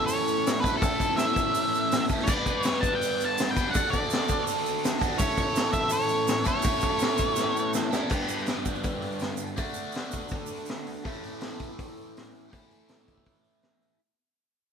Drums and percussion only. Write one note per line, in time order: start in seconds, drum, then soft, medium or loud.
0.08 open hi-hat medium
0.08 shaker loud
0.28 shaker medium
0.46 snare loud
0.46 open hi-hat medium
0.46 shaker loud
0.64 kick medium
0.64 shaker medium
0.81 kick loud
0.81 open hi-hat medium
0.81 shaker medium
1.00 kick medium
1.00 shaker medium
1.17 snare loud
1.17 open hi-hat medium
1.17 shaker medium
1.36 kick medium
1.36 shaker medium
1.54 open hi-hat medium
1.54 shaker loud
1.74 shaker medium
1.91 snare loud
1.91 open hi-hat medium
1.91 shaker medium
2.09 kick medium
2.09 shaker medium
2.20 snare soft
2.27 kick loud
2.27 crash loud
2.27 shaker loud
2.46 kick medium
2.46 shaker medium
2.63 snare loud
2.63 open hi-hat medium
2.63 shaker loud
2.83 kick medium
2.83 shaker medium
3.01 open hi-hat medium
3.01 shaker loud
3.20 shaker medium
3.38 snare loud
3.38 open hi-hat medium
3.38 shaker loud
3.56 kick medium
3.56 snare soft
3.56 shaker medium
3.74 kick loud
3.74 open hi-hat medium
3.74 shaker loud
3.93 kick medium
3.93 shaker medium
4.10 snare loud
4.10 open hi-hat medium
4.10 shaker loud
4.28 kick medium
4.28 shaker medium
4.47 open hi-hat medium
4.47 shaker loud
4.66 shaker medium
4.84 snare loud
4.84 open hi-hat medium
4.84 shaker loud
5.01 kick loud
5.01 snare soft
5.01 shaker medium
5.19 kick loud
5.19 open hi-hat medium
5.19 shaker loud
5.37 kick medium
5.37 shaker medium
5.56 snare loud
5.56 open hi-hat medium
5.56 shaker medium
5.73 kick medium
5.73 shaker medium
5.90 open hi-hat medium
5.90 shaker loud
6.09 shaker medium
6.28 snare loud
6.28 open hi-hat medium
6.28 shaker loud
6.45 kick medium
6.45 shaker medium
6.58 snare soft
6.62 kick loud
6.62 open hi-hat medium
6.62 shaker loud
6.81 kick medium
6.81 shaker medium
6.99 snare loud
6.99 open hi-hat medium
6.99 shaker loud
7.18 kick medium
7.18 shaker medium
7.36 snare medium
7.36 shaker loud
7.57 shaker medium
7.73 snare loud
7.73 shaker loud
7.93 snare loud
7.93 shaker medium
8.10 kick loud
8.10 crash loud
8.10 shaker medium
8.28 open hi-hat soft
8.28 shaker medium
8.39 shaker soft
8.46 snare loud
8.46 open hi-hat medium
8.46 shaker medium
8.65 kick medium
8.65 open hi-hat medium
8.65 shaker loud
8.75 shaker soft
8.83 kick loud
8.83 open hi-hat medium
8.83 shaker medium
9.02 open hi-hat medium
9.12 shaker soft
9.19 snare loud
9.19 open hi-hat medium
9.19 shaker medium
9.37 open hi-hat medium
9.37 shaker medium
9.57 kick loud
9.57 open hi-hat medium
9.57 shaker medium
9.74 open hi-hat medium
9.74 shaker loud
9.92 open hi-hat medium
9.92 shaker medium
9.96 snare loud
10.12 kick medium
10.12 open hi-hat medium
10.12 shaker loud
10.29 kick loud
10.29 open hi-hat medium
10.29 shaker medium
10.46 shaker medium
10.52 open hi-hat medium
10.57 shaker soft
10.66 snare loud
10.66 open hi-hat medium
10.66 shaker medium
10.87 open hi-hat medium
10.94 shaker soft
11.05 kick loud
11.05 open hi-hat medium
11.23 open hi-hat soft
11.41 snare loud
11.41 open hi-hat medium
11.59 kick medium
11.59 open hi-hat medium
11.79 kick loud
11.79 open hi-hat medium
11.97 open hi-hat soft
12.17 snare loud
12.17 open hi-hat medium
12.35 open hi-hat soft
12.53 kick loud
12.53 open hi-hat medium
12.71 open hi-hat medium
12.88 snare loud
12.88 open hi-hat medium
13.08 kick medium
13.08 open hi-hat medium
13.18 kick medium
13.26 kick medium
13.26 open hi-hat medium
13.44 open hi-hat medium
13.62 snare loud
13.62 open hi-hat medium
13.82 open hi-hat medium